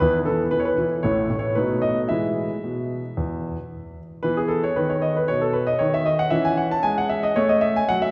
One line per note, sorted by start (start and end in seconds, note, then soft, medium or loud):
0.00 0.26 E2 medium
0.00 0.25 E3 medium
0.00 1.01 B3 soft
0.00 1.01 E4 soft
0.00 0.16 B4 medium
0.25 0.51 E3 soft
0.25 0.41 A4 medium
0.51 0.76 E3 soft
0.51 0.59 B4 medium
0.60 0.67 C#5 medium
0.65 0.88 B4 medium
0.78 1.04 E3 soft
1.03 1.30 A1 soft
1.03 1.28 A2 soft
1.03 1.53 A3 soft
1.03 1.53 E4 soft
1.03 1.38 C#5 medium
1.30 1.56 A2 soft
1.39 1.55 C#5 medium
1.55 1.82 B2 medium
1.55 2.06 A3 soft
1.55 2.06 D#4 soft
1.55 1.80 B4 medium
1.82 2.10 B2 soft
1.82 1.98 D#5 medium
2.09 2.48 E3 soft
2.09 2.53 G#3 soft
2.09 2.53 E4 soft
2.09 3.97 E5 medium
2.64 3.01 B2 soft
3.17 3.55 E2 soft
4.23 4.66 E3 medium
4.23 6.29 B3 soft
4.23 4.37 B4 medium
4.37 4.51 G#4 medium
4.48 4.63 A4 medium
4.64 4.77 C#5 medium
4.76 5.19 D#3 medium
4.76 4.90 B4 medium
4.90 5.03 C#5 medium
5.02 5.16 D#5 medium
5.17 5.30 B4 medium
5.28 5.71 B2 medium
5.28 5.42 C#5 medium
5.41 5.55 A4 medium
5.53 5.67 B4 medium
5.67 5.80 D#5 medium
5.79 6.22 D#3 medium
5.79 5.93 C#5 medium
5.94 6.07 E5 medium
6.06 6.19 D#5 medium
6.19 6.33 F#5 medium
6.30 6.74 E3 medium
6.30 8.11 C#4 soft
6.30 6.45 E5 medium
6.45 6.59 G#5 medium
6.57 6.71 F#5 medium
6.71 6.85 A5 medium
6.83 7.26 G#3 medium
6.83 6.97 G#5 medium
6.98 7.11 F#5 medium
7.10 7.23 E5 medium
7.23 7.37 D#5 medium
7.36 7.79 A3 medium
7.36 7.50 C#5 medium
7.49 7.63 D#5 medium
7.61 7.75 E5 medium
7.76 7.89 G#5 medium
7.89 8.11 F#3 medium
7.89 8.02 F#5 medium
8.02 8.11 E5 medium